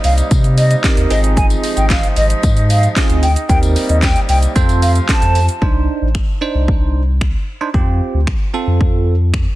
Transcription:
Already playing: C3 G3 A#3 D#4
0.04 C2 F5, open hi-hat, tambourine, shaker
0.17 closed hi-hat, tambourine, shaker
0.31 C3, kick, closed hi-hat, tambourine, shaker
0.44 closed hi-hat, shaker
0.57 D#5, open hi-hat, tambourine, shaker
0.71 closed hi-hat, tambourine, shaker
0.84 C4 D#4 G4 A#4, kick, snare, clap, closed hi-hat, tambourine, shaker
0.97 D#2, closed hi-hat, shaker
1.10 G#1 F3 G#3 C4 D#4 F4 G#4 D#5, open hi-hat, tambourine, shaker
1.24 closed hi-hat, shaker
1.37 G#5, kick, closed hi-hat, shaker
1.50 closed hi-hat, tambourine, shaker
1.63 open hi-hat, tambourine, shaker
1.77 G#1 G5, closed hi-hat, tambourine, shaker
1.90 F5, kick, snare, clap, closed hi-hat, tambourine, shaker
2.03 closed hi-hat, shaker
2.16 G#1 D#5, open hi-hat, tambourine, shaker
2.30 closed hi-hat, shaker
2.43 G#2, kick, closed hi-hat, tambourine, shaker
2.57 closed hi-hat, shaker
2.70 F5, open hi-hat, tambourine, shaker
2.83 closed hi-hat, tambourine, shaker
2.96 C4 D#4 F4 G#4, kick, snare, clap, closed hi-hat, tambourine, shaker
3.10 D2, closed hi-hat, shaker
3.23 G5, open hi-hat, tambourine, shaker
3.36 closed hi-hat, shaker
3.49 D#2 C3 G3 A#3 C4 D#4 G4 A#4 G5, kick, closed hi-hat, shaker
3.63 closed hi-hat, tambourine, shaker
3.76 open hi-hat, tambourine, shaker
3.89 D#2 D#5, closed hi-hat, shaker
4.02 G5, kick, snare, clap, closed hi-hat, tambourine, shaker
4.16 closed hi-hat, shaker
4.29 C2 G5, open hi-hat, tambourine, shaker
4.42 closed hi-hat, tambourine, shaker
4.55 F2 F3 A3 C4 F4 A4 C5, kick, closed hi-hat, tambourine, shaker
4.69 closed hi-hat, tambourine, shaker
4.82 F5, open hi-hat, tambourine, shaker
4.95 closed hi-hat, tambourine, shaker
5.09 C4 F4 A4 C5 A5, kick, snare, clap, closed hi-hat, tambourine, shaker
5.22 F2, closed hi-hat, shaker
5.35 open hi-hat, tambourine, shaker
5.49 closed hi-hat, shaker
5.62 C2 D4 D#4 C5, kick
6.02 A1
6.15 finger snap, kick
6.41 D4 D#4 C5
6.55 C2
6.68 kick
7.21 finger snap, kick
7.61 D4 D#4 C5
7.74 F2 C4 F4 G4, kick
8.14 D2
8.27 finger snap, kick
8.54 C4 F4 A4
8.67 F2
8.81 kick
9.34 finger snap, kick

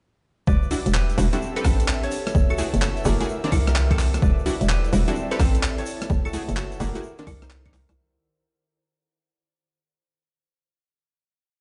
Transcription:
0.47 E1 D4 B4 D5 E5, kick, shaker
0.62 shaker
0.69 G3 D4 E4 F#4 G4, open hi-hat, shaker
0.86 E1, closed hi-hat, shaker
0.91 G4 B4 E5, cross-stick, clap, shaker
1.10 closed hi-hat, shaker
1.18 E1 G3 D4 E4 F#4, open hi-hat, shaker
1.32 G3 C4 D4 E4 F#4 A4, closed hi-hat, shaker
1.42 shaker
1.56 C4 G4 A4 B4, closed hi-hat, claves, shaker
1.64 A1 C4 A4, kick, cross-stick, open hi-hat, shaker
1.80 closed hi-hat, shaker
1.88 clap, shaker
2.03 A4 C#5, closed hi-hat, shaker
2.11 E4, open hi-hat, shaker
2.22 F#5
2.27 A4, cross-stick, closed hi-hat, shaker
2.35 F#1, kick, shaker
2.49 F#4 A4, claves, shaker
2.58 A3 E4 F#4 G#4, open hi-hat, shaker
2.73 F#1, closed hi-hat, shaker
2.81 F#4 A4, cross-stick, clap, shaker
2.96 closed hi-hat, shaker
3.04 F#1 A3 E4 F#4 G4 G#4 A#4, open hi-hat, shaker
3.20 A3 E4 F#4 G#4, closed hi-hat, shaker
3.29 D#3, shaker
3.44 D#3 A#3 C4 D4 A#4 D5, closed hi-hat, shaker
3.52 C2, kick, open hi-hat, claves, shaker
3.64 G4 A#4 D5, cross-stick, closed hi-hat, shaker
3.76 clap, shaker
3.90 C4 A4, kick, closed hi-hat, claves, shaker
3.99 clap, open hi-hat, shaker
4.14 cross-stick, closed hi-hat, shaker
4.22 E1 E4 B4 D5, kick, shaker
4.39 shaker
4.46 G3 D4 E4 F#4, open hi-hat, shaker
4.61 E1 G5, closed hi-hat, shaker
4.69 G4 B4, cross-stick, clap, shaker
4.84 closed hi-hat, shaker
4.93 E1 G3 D4 E4 F#4, open hi-hat, shaker
5.08 G3 C4 D4 E4 F#4 A4, closed hi-hat, shaker
5.15 shaker
5.31 C4 G4 A4 B4, closed hi-hat, claves, shaker
5.39 A1 C4 A4, kick, cross-stick, open hi-hat, shaker
5.54 closed hi-hat, shaker
5.63 clap, shaker
5.78 A4 C#5, closed hi-hat, shaker
5.86 E4, open hi-hat, shaker
6.01 A4, cross-stick, closed hi-hat, shaker
6.09 F#1, kick, shaker
6.16 F#5
6.25 F#4 A4, claves, shaker
6.33 A3 E4 F#4 G#4, open hi-hat, shaker
6.49 F#1, closed hi-hat, shaker
6.56 F#4 A4, cross-stick, clap, shaker
6.72 closed hi-hat, shaker
6.80 F#1 A3 E4 F#4 G4 G#4 A#4, open hi-hat, shaker
6.95 A3 E4 F#4 G#4, closed hi-hat, shaker
7.03 D#3, shaker
7.15 D#3 A#3 C4 D4 A#4 C5, closed hi-hat, shaker
7.19 D5
7.27 C2, kick, open hi-hat, claves, shaker
7.42 D#4 C5, cross-stick, closed hi-hat, shaker
7.50 clap, shaker
7.65 D#3 A#3 C4 D4 G4 A#4, kick, closed hi-hat, claves, shaker
7.74 C2, clap, open hi-hat, shaker
7.89 C2, cross-stick, closed hi-hat, shaker

